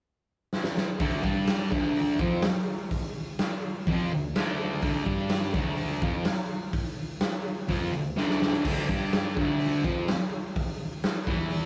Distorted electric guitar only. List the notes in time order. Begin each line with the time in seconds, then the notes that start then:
0.99 D2 D3
1.23 G2 G3
1.71 D2 D3
2.20 F2 F3
3.87 F2 F3
4.11 D2
4.36 D2 D3
4.83 D2 D3
5.04 G2 G3
5.54 D2 D3
6.02 F2 F3
7.68 F2 F3
7.93 D2
8.17 D2 D3
8.66 D2 D3
8.88 G2 G3
9.37 D2 D3
9.84 F2 F3
11.27 E2 E3